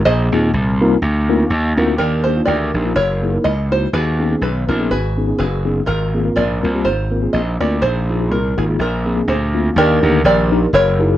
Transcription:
0.05 A#1 A#2 G#4 C5 D#5
0.32 D#2 A#3 C4 D#4 F4 G#4
0.54 C2
0.81 A#3 C4 D#4 F4 A#4
1.02 D2
1.29 A#3 C4 D#4 F4 A#4
1.50 D#2
1.77 D2 A#3 C4 D#4 F4 A#4
1.98 D#2 D#3 D4 G4 A#4
2.24 A#3 D4 D#4 G4 C5
2.37 A#3 D4 D#4 F4
2.45 D2 G4 A#4 D5
2.74 A#1 A#3 D4 D#4 G4
2.86 A#3 D4 D#4 F4
2.96 F#1 E4 A#4 C#5
3.22 A#3 D#4 E4 G#4
3.33 A#3 D#4 E4 A#4
3.44 C#2 D#5
3.71 A#3 D#4 E4 F#4 C5
3.93 D#2 D#3 F#4 G#4 B4
4.20 B3 C#4 D#4 G#4
4.31 B3 C#4 D#4 G#4
4.41 B1 B4
4.68 A#1 B3 C#4 D#4 F4 A#4
4.79 B3 C#4 D#4 G#4
4.90 G#1 F#4 G#4 B4
5.17 B3 C#4 D#4 G#4
5.27 B3 C#4 D#4 G#4
5.39 F#1 F#4 G#4 B4
5.65 B3 C#4 D#4 G#4
5.86 G#1 G#2 D#4 F4 A#4
6.14 A#3 C4 F4 G#4
6.25 A#3 C4 F4 A#4
6.36 A#1 F4 A#4 D5
6.63 C2 A#3 C4 F4 A#4
6.74 A#3 C4 F4 G4
6.85 G#1 D#4 F4 C5
7.11 A#3 C4 F4 A#4
7.22 A#3 C4 F4 G#4
7.33 A#1 D#5
7.60 D2 A#3 C4 F4 A#4 D5
7.82 A#1 A#2 D#4 G#4 C5
8.10 A#3 D#4 F4 G#4
8.20 A#3 D#4 F4 G#4
8.31 C2 A#4
8.57 G#1 A#3 D#4 F4 G#4 A#4
8.68 A#3 D#4 F4 G#4
8.79 A#1 A#2 D4 F4 A#4
9.06 A#3 C4 D4 G#4
9.16 A#3 C4 D4 G#4
9.27 D2 F4 G#4 C5
9.54 A#3 C4 D4 F4
9.76 D#2 D#3 D4 G4 A#4
10.03 D2 A#3 D4 D#4 G4 A#4
10.24 A#1 G4 A#4 D5
10.51 A#3 D4 D#4 G4 A#4
10.73 F#1 E4 A#4 C#5
10.99 D#4 E4 F#4 G#4 A#4

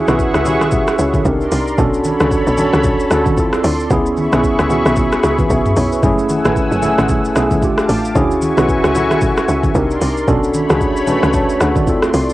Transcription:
Already playing: C#4 E4 F#4 G#4 E5 F#5 C#6
0.07 B1 C#4 E4 F#4 B4, cross-stick, high conga, shaker
0.19 kick, shaker
0.34 C#2, cross-stick, shaker
0.45 C#4 E4 F#4 G4, high conga, low conga, shaker
0.54 G#4
0.61 B1, cross-stick, high conga, shaker
0.72 G#4 E5, kick, low conga, shaker
0.88 cross-stick, shaker
0.99 C#2 E4 C#5, shaker
1.14 C#4 A4, kick, high conga, shaker
1.24 C2 D4 D#4 G4 A#4 D5 C6, kick, shaker
1.41 shaker
1.52 C2, open hi-hat, shaker
1.68 shaker
1.78 B1 C#4 D4 F#4 A4 C#5 B5, kick, low conga, shaker
1.94 shaker
2.04 high conga, shaker
2.20 C#2 C#4 D4 F#4 A4, cross-stick, high conga, shaker
2.31 kick, shaker
2.47 B1, shaker
2.57 C#4 D4 F#4 A4, high conga, low conga, shaker
2.73 C#2, cross-stick, high conga, shaker
2.84 kick, low conga, shaker
3.00 shaker
3.10 D2 C#4 D4 F#4 A4, cross-stick, shaker
3.26 kick, high conga, shaker
3.37 C4 E4 F4 A4 D5 C6, kick, shaker
3.53 cross-stick, shaker
3.64 D2, open hi-hat, shaker
3.80 shaker
3.90 C#2 B3 C#4 E4 G#4 E5 B5 C#6, kick, low conga, shaker
4.06 shaker
4.17 high conga, shaker
4.32 B1 B3 C#4 E4 G#4, cross-stick, high conga, shaker
4.44 kick, shaker
4.59 C#2, cross-stick, shaker
4.70 B3 C#4 E4 F#4, high conga, low conga, shaker
4.86 B1, cross-stick, high conga, shaker
4.96 kick, low conga, shaker
5.12 cross-stick, shaker
5.23 C#2, cross-stick, shaker
5.39 B4, kick, high conga, shaker
5.50 B1 G#4 E5, kick, shaker
5.66 mid tom, shaker
5.76 B1 E4 C#5, open hi-hat, shaker
5.92 B4, shaker
6.02 F#1 A3 C#4 E4 G#4 F#5 G#5 E6, kick, low conga, shaker
6.18 shaker
6.29 high conga, shaker
6.44 A1 A3 C#4 E4 B4, cross-stick, high conga, shaker
6.56 kick, shaker
6.72 F#1, shaker
6.82 A3 C#4 E4 G#4, high conga, low conga, shaker
6.98 A1, cross-stick, high conga, shaker
7.09 kick, low conga, shaker
7.25 shaker
7.35 B1 A3 C#4 E4 G#4, cross-stick, shaker
7.51 kick, high conga, shaker
7.62 A3 D4 F4 G4 F5 A5 D6, kick, shaker
7.78 cross-stick, shaker
7.89 A1, open hi-hat, shaker
8.05 shaker
8.15 D2 C#4 E4 F#4 G#4 E5 G#5 C#6, kick, low conga, shaker
8.31 shaker
8.42 high conga, shaker
8.57 B1 C#4 E4 F#4 B4, cross-stick, high conga, shaker
8.69 kick, shaker
8.84 C#2, cross-stick, shaker
8.94 C#4 E4 F#4 A4, high conga, low conga, shaker
9.10 B1, cross-stick, high conga, shaker
9.21 kick, low conga, shaker
9.37 cross-stick, shaker
9.48 C#2, shaker
9.63 kick, high conga, shaker
9.74 C2 D4 D#4 G4 A#4 D5 C6, kick, shaker
9.90 shaker
10.01 C2, open hi-hat, shaker
10.17 shaker
10.27 B1 A3 C#4 D4 F#4 A4 C#5 B5, kick, low conga, shaker
10.43 shaker
10.54 high conga, shaker
10.69 C#2 C#4 D4 F#4 G#4, cross-stick, high conga, shaker
10.81 kick, shaker
10.96 B1, shaker
11.07 C#4 D4 F#4 B4, high conga, low conga, shaker
11.23 C#2, cross-stick, high conga, shaker
11.34 C#5 A5, kick, low conga, shaker
11.50 shaker
11.61 D2 A4 F#5, cross-stick, shaker
11.76 F#4 D5, kick, high conga, shaker
11.87 C4 E4 F4 A4 D5 C6, kick, shaker
12.02 cross-stick, shaker
12.14 C2, open hi-hat, shaker
12.30 shaker

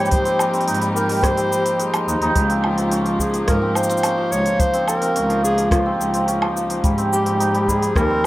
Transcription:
Already playing: F3 G3 A#3 C4 D#4 F4 G4 C#5
0.05 shaker
0.11 G3 C5, kick, open hi-hat, shaker
0.25 C4, open hi-hat, shaker
0.39 G3, low woodblock, shaker
0.53 C4, open hi-hat, shaker
0.61 open hi-hat
0.67 G#2 D#4, open hi-hat, shaker
0.74 open hi-hat
0.81 G3, open hi-hat, shaker
0.95 G4 A#4, shaker
1.09 G3, open hi-hat, shaker
1.12 open hi-hat
1.14 open hi-hat
1.17 open hi-hat
1.19 open hi-hat
1.21 G3 C5, kick, cross-stick, open hi-hat
1.24 open hi-hat, shaker
1.37 C4, open hi-hat, shaker
1.52 G3, shaker
1.66 open hi-hat, shaker
1.80 G#3, open hi-hat, shaker
1.94 G#3, open hi-hat, low woodblock, shaker
2.08 D#2 D#4, shaker
2.21 D#2 D#4, open hi-hat
2.36 C#2 F3, kick, open hi-hat, shaker
2.50 C4, open hi-hat, shaker
2.64 F3 F4, low woodblock
2.78 C4, open hi-hat, shaker
2.91 C#4, open hi-hat, shaker
3.06 F3, open hi-hat
3.19 F3 G#4, kick, shaker
3.34 F3, open hi-hat, shaker
3.48 G#2 F3 A#4, kick, cross-stick, open hi-hat, shaker
3.62 C4
3.75 F3 C5, low woodblock, shaker
3.83 shaker
3.90 C4, open hi-hat, shaker
3.97 shaker
4.03 C#4, open hi-hat, low woodblock, shaker
4.18 F3
4.32 C#2 F3 C#5, shaker
4.46 F3, open hi-hat, shaker
4.60 F3 C5, kick, open hi-hat, shaker
4.74 C4, open hi-hat, shaker
4.87 F3 A#4, low woodblock, shaker
5.02 C4, open hi-hat, shaker
5.15 C#2 C#4, open hi-hat, shaker
5.30 F3, open hi-hat
5.43 F3 G#4, shaker
5.58 F3, open hi-hat, shaker
5.71 F3 F4, kick, cross-stick, open hi-hat, shaker
5.86 C4
6.00 C#2 F3, shaker
6.14 C4, open hi-hat, shaker
6.28 C#4, open hi-hat, shaker
6.42 F3, low woodblock
6.56 F3, shaker
6.70 F3, open hi-hat, shaker
6.84 G#2 F3 G3, kick, open hi-hat, shaker
6.98 C4, open hi-hat, shaker
7.12 G3 G4, shaker
7.26 C4, open hi-hat
7.40 D#4, open hi-hat, shaker
7.54 G3, open hi-hat
7.68 G3 G#4, kick, shaker
7.82 G3, open hi-hat, shaker
7.96 D#2 G3 A#4, kick, cross-stick, shaker
8.10 C4

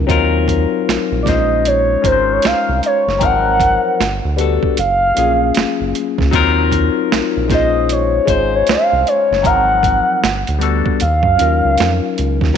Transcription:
Already playing: F3 F#3 C#4 D#4 F4 A#4
0.07 D#2 F#3 C4 D#4 F4, kick, closed hi-hat
0.11 A#4
0.48 kick, closed hi-hat
0.89 A#1, snare, closed hi-hat
1.12 A#1
1.23 G#3 C#4 D#4 D5, kick
1.27 A#1 F4 C5 D#5, snare, closed hi-hat
1.65 C#5, closed hi-hat
2.01 G#1 G#3 C#4 D#4 F4, kick, closed hi-hat
2.06 A#4 C5
2.12 C5
2.32 C#5
2.42 C2 F5, snare, closed hi-hat
2.69 C2
2.83 C#5, closed hi-hat
3.07 F#1, snare
3.18 G#1 F3 F#3 C4 D#4, kick, closed hi-hat
3.23 A#4 F#5
3.60 kick, closed hi-hat
4.00 G1, snare, closed hi-hat
4.25 D2
4.37 G3 B3 D4 F#4, closed hi-hat
4.41 A4
4.63 kick
4.77 F#1 F5, closed hi-hat
5.14 A#1 F#3 A#3 C#4 F4, closed hi-hat
5.19 G#4
5.54 F#1, snare, closed hi-hat
5.81 F#1
5.95 closed hi-hat
6.18 C#2, kick, snare
6.31 D#2 F#3 C4 D#4 F4, kick, closed hi-hat
6.35 A#4
6.72 kick, closed hi-hat
7.12 A#1, snare, closed hi-hat
7.37 A#1
7.47 A#1 G#3 C#4 D#4 F4, kick, closed hi-hat
7.52 C5 D#5, snare
7.89 C#5, closed hi-hat
8.25 G#1 G#3 C#4 D#4 F4, kick, closed hi-hat
8.30 C5
8.55 C#5
8.67 C2 F5, snare, closed hi-hat
8.93 C2
9.07 C#5, closed hi-hat
9.31 F#1, snare
9.42 G#1 F3 F#3 C4 D#4 F#5, kick, closed hi-hat
9.46 A#4
9.83 kick, closed hi-hat
10.24 G1, snare, closed hi-hat
10.47 D2, closed hi-hat
10.58 G3 B3 D4 F#4, closed hi-hat
10.63 A4
10.86 kick
11.00 D#2 F5, closed hi-hat
11.23 F#2, kick
11.36 F#3 C#4 D#4 F4, closed hi-hat
11.41 D#2 A#4
11.65 C#2
11.78 F2, snare, closed hi-hat
12.18 C#2, closed hi-hat
12.41 D#2, kick, snare
12.54 F#3

